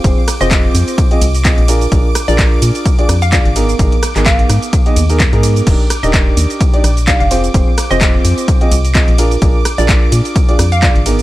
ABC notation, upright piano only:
X:1
M:4/4
L:1/16
Q:"Swing 16ths" 1/4=128
K:Bbmix
V:1 name="Upright piano"
[CFAc] z2 [CFAc]6 [CFAe] z2 [CFAe] z [DFAB] z | [DFAB] z2 [DFAB]6 [DFAd] z2 [DFAd] z [_CEAB] z | [_CEAB] z2 [CEAB]6 [CEAe] z [CEAB] z [CEAB]3 | [DEGB] z2 [DEGB]6 [DEGd] z2 [DEGd] z [CFAc] z |
[CFAc] z2 [CFAc]6 [CFAe] z2 [CFAe] z [DFAB] z | [DFAB] z2 [DFAB]6 [DFAd] z2 [DFAd] z [_CEAB] z |]